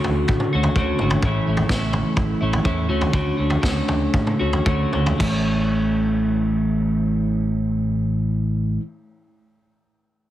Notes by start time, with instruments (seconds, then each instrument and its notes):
Already playing: clean electric guitar D3 A3 C#4 F#4
0.04 picked electric bass D2, floor tom, mid tom
0.28 picked electric bass A2, kick, floor tom
0.40 mid tom
0.53 picked electric bass D2, clean electric guitar A3 C#4 F#4
0.63 floor tom
0.76 picked electric bass D2, clean electric guitar D3 A3 C#4 F#4, kick
0.99 picked electric bass G#1, clean electric guitar A3 C#4 F#4, mid tom
1.10 floor tom
1.22 picked electric bass A1, clean electric guitar A2 E3 A3 C#4 E4, kick, floor tom
1.46 picked electric bass A1, clean electric guitar A3 C#4 E4
1.57 floor tom
1.69 picked electric bass A1, clean electric guitar E3 A3 C#4 E4, kick, snare, mid tom
1.93 floor tom, mid tom
2.17 picked electric bass A1, kick, floor tom
2.41 picked electric bass A1, clean electric guitar A3 C#4 E4
2.53 floor tom
2.64 picked electric bass E2, clean electric guitar A2 E3 A3 C#4 E4, kick
2.89 picked electric bass D2, clean electric guitar D3 A3 C#4 F#4
3.01 floor tom
3.13 picked electric bass D2, clean electric guitar D3 A3 C#4 F#4, kick, floor tom
3.37 picked electric bass D2, clean electric guitar A3 C#4 F#4
3.50 floor tom
3.62 picked electric bass D2, clean electric guitar D3 A3 C#4 F#4, kick, snare, mid tom
3.88 picked electric bass D2, floor tom, mid tom
4.14 picked electric bass A2, kick, floor tom
4.27 mid tom
4.39 picked electric bass D2, clean electric guitar A3 C#4 F#4
4.53 floor tom
4.65 picked electric bass D2, clean electric guitar D3 A3 C#4 F#4, kick
4.93 picked electric bass D2, clean electric guitar A3 C#4 F#4, mid tom
5.06 floor tom
5.18 picked electric bass A1, clean electric guitar A2 E3 A3 C#4, kick, crash
5.22 clean electric guitar E4